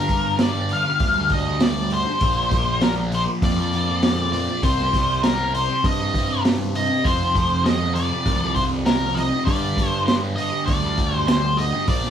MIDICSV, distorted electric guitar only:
0, 0, Header, 1, 2, 480
1, 0, Start_track
1, 0, Tempo, 604230
1, 1760, Time_signature, 4, 2, 24, 8
1, 9612, End_track
2, 0, Start_track
2, 0, Title_t, "Distorted electric guitar"
2, 0, Program_c, 0, 30
2, 0, Note_on_c, 0, 50, 89
2, 0, Note_on_c, 0, 55, 83
2, 76, Note_on_c, 0, 43, 74
2, 80, Note_off_c, 0, 50, 0
2, 89, Note_on_c, 0, 50, 75
2, 91, Note_off_c, 0, 55, 0
2, 100, Note_on_c, 0, 55, 76
2, 304, Note_off_c, 0, 43, 0
2, 313, Note_on_c, 0, 43, 89
2, 322, Note_off_c, 0, 50, 0
2, 331, Note_on_c, 0, 50, 103
2, 335, Note_off_c, 0, 55, 0
2, 344, Note_on_c, 0, 55, 106
2, 434, Note_off_c, 0, 55, 0
2, 444, Note_on_c, 0, 55, 80
2, 463, Note_off_c, 0, 50, 0
2, 472, Note_on_c, 0, 50, 58
2, 559, Note_off_c, 0, 43, 0
2, 568, Note_on_c, 0, 43, 75
2, 571, Note_off_c, 0, 50, 0
2, 580, Note_on_c, 0, 50, 79
2, 583, Note_off_c, 0, 55, 0
2, 592, Note_on_c, 0, 55, 76
2, 678, Note_off_c, 0, 55, 0
2, 688, Note_on_c, 0, 55, 69
2, 705, Note_off_c, 0, 50, 0
2, 714, Note_on_c, 0, 50, 58
2, 913, Note_off_c, 0, 55, 0
2, 922, Note_on_c, 0, 55, 67
2, 924, Note_off_c, 0, 43, 0
2, 944, Note_off_c, 0, 50, 0
2, 954, Note_on_c, 0, 50, 54
2, 1037, Note_on_c, 0, 43, 70
2, 1046, Note_off_c, 0, 50, 0
2, 1056, Note_on_c, 0, 50, 71
2, 1058, Note_off_c, 0, 55, 0
2, 1067, Note_on_c, 0, 55, 81
2, 1144, Note_off_c, 0, 55, 0
2, 1153, Note_on_c, 0, 55, 78
2, 1174, Note_off_c, 0, 50, 0
2, 1184, Note_on_c, 0, 50, 66
2, 1259, Note_off_c, 0, 43, 0
2, 1269, Note_on_c, 0, 43, 85
2, 1273, Note_off_c, 0, 50, 0
2, 1282, Note_on_c, 0, 50, 91
2, 1284, Note_off_c, 0, 55, 0
2, 1293, Note_on_c, 0, 55, 95
2, 1500, Note_off_c, 0, 43, 0
2, 1509, Note_on_c, 0, 43, 72
2, 1512, Note_off_c, 0, 50, 0
2, 1521, Note_on_c, 0, 50, 76
2, 1529, Note_off_c, 0, 55, 0
2, 1539, Note_on_c, 0, 55, 66
2, 1626, Note_off_c, 0, 55, 0
2, 1636, Note_on_c, 0, 55, 64
2, 1651, Note_off_c, 0, 50, 0
2, 1660, Note_on_c, 0, 50, 55
2, 1740, Note_off_c, 0, 43, 0
2, 1743, Note_off_c, 0, 55, 0
2, 1745, Note_off_c, 0, 50, 0
2, 1749, Note_on_c, 0, 46, 83
2, 1768, Note_on_c, 0, 53, 74
2, 1778, Note_on_c, 0, 58, 89
2, 1976, Note_off_c, 0, 46, 0
2, 1985, Note_on_c, 0, 46, 65
2, 1998, Note_off_c, 0, 53, 0
2, 2008, Note_on_c, 0, 53, 68
2, 2011, Note_off_c, 0, 58, 0
2, 2021, Note_on_c, 0, 58, 83
2, 2217, Note_off_c, 0, 46, 0
2, 2227, Note_on_c, 0, 46, 98
2, 2235, Note_off_c, 0, 53, 0
2, 2244, Note_on_c, 0, 53, 99
2, 2245, Note_off_c, 0, 58, 0
2, 2254, Note_on_c, 0, 58, 99
2, 2338, Note_off_c, 0, 58, 0
2, 2348, Note_on_c, 0, 58, 70
2, 2367, Note_off_c, 0, 53, 0
2, 2377, Note_on_c, 0, 53, 55
2, 2454, Note_off_c, 0, 46, 0
2, 2463, Note_on_c, 0, 46, 68
2, 2471, Note_off_c, 0, 53, 0
2, 2481, Note_on_c, 0, 53, 80
2, 2486, Note_off_c, 0, 58, 0
2, 2495, Note_on_c, 0, 58, 76
2, 2577, Note_off_c, 0, 58, 0
2, 2586, Note_on_c, 0, 58, 67
2, 2603, Note_off_c, 0, 53, 0
2, 2613, Note_on_c, 0, 53, 54
2, 2821, Note_off_c, 0, 58, 0
2, 2831, Note_on_c, 0, 58, 77
2, 2832, Note_off_c, 0, 46, 0
2, 2849, Note_off_c, 0, 53, 0
2, 2859, Note_on_c, 0, 53, 58
2, 2947, Note_on_c, 0, 46, 65
2, 2959, Note_off_c, 0, 53, 0
2, 2968, Note_on_c, 0, 53, 70
2, 2972, Note_off_c, 0, 58, 0
2, 2982, Note_on_c, 0, 58, 78
2, 3063, Note_off_c, 0, 58, 0
2, 3072, Note_on_c, 0, 58, 69
2, 3093, Note_off_c, 0, 53, 0
2, 3102, Note_on_c, 0, 53, 56
2, 3182, Note_off_c, 0, 46, 0
2, 3192, Note_on_c, 0, 46, 81
2, 3197, Note_off_c, 0, 53, 0
2, 3206, Note_on_c, 0, 53, 87
2, 3208, Note_off_c, 0, 58, 0
2, 3217, Note_on_c, 0, 58, 100
2, 3424, Note_off_c, 0, 46, 0
2, 3434, Note_on_c, 0, 46, 72
2, 3438, Note_off_c, 0, 53, 0
2, 3447, Note_on_c, 0, 53, 67
2, 3450, Note_off_c, 0, 58, 0
2, 3459, Note_on_c, 0, 58, 76
2, 3545, Note_off_c, 0, 58, 0
2, 3554, Note_on_c, 0, 58, 63
2, 3570, Note_off_c, 0, 53, 0
2, 3580, Note_on_c, 0, 53, 56
2, 3663, Note_off_c, 0, 46, 0
2, 3663, Note_off_c, 0, 58, 0
2, 3676, Note_off_c, 0, 53, 0
2, 3676, Note_on_c, 0, 48, 77
2, 3697, Note_on_c, 0, 55, 93
2, 3709, Note_on_c, 0, 60, 96
2, 3903, Note_off_c, 0, 48, 0
2, 3912, Note_on_c, 0, 48, 68
2, 3915, Note_off_c, 0, 55, 0
2, 3925, Note_on_c, 0, 55, 82
2, 3935, Note_off_c, 0, 60, 0
2, 3938, Note_on_c, 0, 60, 80
2, 4142, Note_off_c, 0, 48, 0
2, 4151, Note_on_c, 0, 48, 99
2, 4164, Note_off_c, 0, 55, 0
2, 4174, Note_on_c, 0, 55, 96
2, 4178, Note_off_c, 0, 60, 0
2, 4181, Note_on_c, 0, 60, 108
2, 4269, Note_off_c, 0, 60, 0
2, 4272, Note_on_c, 0, 60, 79
2, 4290, Note_off_c, 0, 55, 0
2, 4300, Note_on_c, 0, 55, 63
2, 4383, Note_off_c, 0, 48, 0
2, 4392, Note_on_c, 0, 48, 80
2, 4399, Note_off_c, 0, 55, 0
2, 4409, Note_on_c, 0, 55, 74
2, 4415, Note_off_c, 0, 60, 0
2, 4418, Note_on_c, 0, 60, 79
2, 4503, Note_off_c, 0, 60, 0
2, 4513, Note_on_c, 0, 60, 70
2, 4530, Note_off_c, 0, 55, 0
2, 4539, Note_on_c, 0, 55, 55
2, 4750, Note_off_c, 0, 60, 0
2, 4756, Note_off_c, 0, 48, 0
2, 4760, Note_on_c, 0, 60, 69
2, 4777, Note_off_c, 0, 55, 0
2, 4787, Note_on_c, 0, 55, 58
2, 4878, Note_on_c, 0, 48, 66
2, 4882, Note_off_c, 0, 55, 0
2, 4891, Note_on_c, 0, 55, 74
2, 4895, Note_off_c, 0, 60, 0
2, 4904, Note_on_c, 0, 60, 82
2, 4984, Note_off_c, 0, 60, 0
2, 4994, Note_on_c, 0, 60, 71
2, 5013, Note_off_c, 0, 55, 0
2, 5022, Note_on_c, 0, 55, 57
2, 5101, Note_off_c, 0, 48, 0
2, 5110, Note_on_c, 0, 48, 88
2, 5118, Note_off_c, 0, 55, 0
2, 5127, Note_on_c, 0, 55, 88
2, 5130, Note_off_c, 0, 60, 0
2, 5139, Note_on_c, 0, 60, 95
2, 5343, Note_off_c, 0, 48, 0
2, 5352, Note_on_c, 0, 48, 68
2, 5362, Note_off_c, 0, 55, 0
2, 5371, Note_on_c, 0, 55, 83
2, 5377, Note_off_c, 0, 60, 0
2, 5387, Note_on_c, 0, 60, 80
2, 5467, Note_off_c, 0, 60, 0
2, 5477, Note_on_c, 0, 60, 65
2, 5495, Note_off_c, 0, 55, 0
2, 5505, Note_on_c, 0, 55, 50
2, 5582, Note_off_c, 0, 48, 0
2, 5584, Note_off_c, 0, 60, 0
2, 5593, Note_on_c, 0, 41, 83
2, 5598, Note_off_c, 0, 55, 0
2, 5610, Note_on_c, 0, 48, 87
2, 5622, Note_on_c, 0, 53, 92
2, 5825, Note_off_c, 0, 41, 0
2, 5834, Note_on_c, 0, 41, 67
2, 5843, Note_off_c, 0, 48, 0
2, 5852, Note_on_c, 0, 48, 78
2, 5854, Note_off_c, 0, 53, 0
2, 5863, Note_on_c, 0, 53, 79
2, 6060, Note_off_c, 0, 41, 0
2, 6070, Note_on_c, 0, 41, 90
2, 6080, Note_off_c, 0, 48, 0
2, 6090, Note_on_c, 0, 48, 100
2, 6093, Note_off_c, 0, 53, 0
2, 6103, Note_on_c, 0, 53, 105
2, 6184, Note_off_c, 0, 53, 0
2, 6194, Note_on_c, 0, 53, 75
2, 6216, Note_off_c, 0, 48, 0
2, 6226, Note_on_c, 0, 48, 60
2, 6309, Note_off_c, 0, 41, 0
2, 6319, Note_on_c, 0, 41, 66
2, 6323, Note_off_c, 0, 48, 0
2, 6333, Note_on_c, 0, 48, 76
2, 6334, Note_off_c, 0, 53, 0
2, 6343, Note_on_c, 0, 53, 85
2, 6427, Note_off_c, 0, 53, 0
2, 6436, Note_on_c, 0, 53, 70
2, 6456, Note_off_c, 0, 48, 0
2, 6466, Note_on_c, 0, 48, 53
2, 6668, Note_off_c, 0, 53, 0
2, 6678, Note_on_c, 0, 53, 73
2, 6679, Note_off_c, 0, 41, 0
2, 6695, Note_off_c, 0, 48, 0
2, 6705, Note_on_c, 0, 48, 57
2, 6804, Note_on_c, 0, 41, 69
2, 6812, Note_off_c, 0, 48, 0
2, 6821, Note_off_c, 0, 53, 0
2, 6822, Note_on_c, 0, 48, 80
2, 6831, Note_on_c, 0, 53, 88
2, 6909, Note_off_c, 0, 53, 0
2, 6918, Note_on_c, 0, 53, 70
2, 6944, Note_off_c, 0, 48, 0
2, 6953, Note_on_c, 0, 48, 57
2, 7025, Note_off_c, 0, 41, 0
2, 7035, Note_on_c, 0, 41, 100
2, 7044, Note_off_c, 0, 48, 0
2, 7053, Note_on_c, 0, 48, 97
2, 7055, Note_off_c, 0, 53, 0
2, 7064, Note_on_c, 0, 53, 97
2, 7272, Note_off_c, 0, 41, 0
2, 7281, Note_on_c, 0, 41, 70
2, 7286, Note_off_c, 0, 48, 0
2, 7296, Note_on_c, 0, 48, 69
2, 7301, Note_off_c, 0, 53, 0
2, 7311, Note_on_c, 0, 53, 74
2, 7390, Note_off_c, 0, 53, 0
2, 7400, Note_on_c, 0, 53, 71
2, 7416, Note_off_c, 0, 48, 0
2, 7426, Note_on_c, 0, 48, 53
2, 7504, Note_off_c, 0, 53, 0
2, 7505, Note_off_c, 0, 41, 0
2, 7517, Note_off_c, 0, 48, 0
2, 7519, Note_on_c, 0, 43, 79
2, 7532, Note_on_c, 0, 50, 85
2, 7549, Note_on_c, 0, 55, 91
2, 7746, Note_off_c, 0, 43, 0
2, 7756, Note_on_c, 0, 43, 66
2, 7765, Note_off_c, 0, 50, 0
2, 7775, Note_on_c, 0, 50, 72
2, 7778, Note_off_c, 0, 55, 0
2, 7787, Note_on_c, 0, 55, 83
2, 7987, Note_off_c, 0, 43, 0
2, 7996, Note_on_c, 0, 43, 91
2, 8000, Note_off_c, 0, 50, 0
2, 8010, Note_on_c, 0, 50, 106
2, 8015, Note_off_c, 0, 55, 0
2, 8024, Note_on_c, 0, 55, 108
2, 8107, Note_off_c, 0, 55, 0
2, 8116, Note_on_c, 0, 55, 81
2, 8133, Note_off_c, 0, 50, 0
2, 8143, Note_on_c, 0, 50, 63
2, 8228, Note_off_c, 0, 43, 0
2, 8237, Note_on_c, 0, 43, 75
2, 8243, Note_off_c, 0, 50, 0
2, 8253, Note_on_c, 0, 50, 80
2, 8256, Note_off_c, 0, 55, 0
2, 8265, Note_on_c, 0, 55, 72
2, 8343, Note_off_c, 0, 55, 0
2, 8352, Note_on_c, 0, 55, 67
2, 8368, Note_off_c, 0, 50, 0
2, 8377, Note_on_c, 0, 50, 53
2, 8583, Note_off_c, 0, 55, 0
2, 8593, Note_on_c, 0, 55, 71
2, 8597, Note_off_c, 0, 43, 0
2, 8608, Note_off_c, 0, 50, 0
2, 8618, Note_on_c, 0, 50, 60
2, 8710, Note_on_c, 0, 43, 72
2, 8714, Note_off_c, 0, 50, 0
2, 8723, Note_on_c, 0, 50, 76
2, 8729, Note_off_c, 0, 55, 0
2, 8738, Note_on_c, 0, 55, 86
2, 8820, Note_off_c, 0, 55, 0
2, 8829, Note_on_c, 0, 55, 76
2, 8846, Note_off_c, 0, 50, 0
2, 8856, Note_on_c, 0, 50, 60
2, 8938, Note_off_c, 0, 43, 0
2, 8948, Note_on_c, 0, 43, 88
2, 8956, Note_off_c, 0, 50, 0
2, 8966, Note_on_c, 0, 50, 85
2, 8970, Note_off_c, 0, 55, 0
2, 8979, Note_on_c, 0, 55, 98
2, 9177, Note_off_c, 0, 43, 0
2, 9187, Note_on_c, 0, 43, 66
2, 9192, Note_off_c, 0, 50, 0
2, 9202, Note_on_c, 0, 50, 69
2, 9204, Note_off_c, 0, 55, 0
2, 9213, Note_on_c, 0, 55, 79
2, 9300, Note_off_c, 0, 55, 0
2, 9310, Note_on_c, 0, 55, 67
2, 9329, Note_off_c, 0, 50, 0
2, 9339, Note_on_c, 0, 50, 58
2, 9417, Note_off_c, 0, 43, 0
2, 9418, Note_off_c, 0, 50, 0
2, 9418, Note_off_c, 0, 55, 0
2, 9421, Note_on_c, 0, 46, 77
2, 9434, Note_on_c, 0, 53, 81
2, 9452, Note_on_c, 0, 58, 89
2, 9612, Note_off_c, 0, 46, 0
2, 9612, Note_off_c, 0, 53, 0
2, 9612, Note_off_c, 0, 58, 0
2, 9612, End_track
0, 0, End_of_file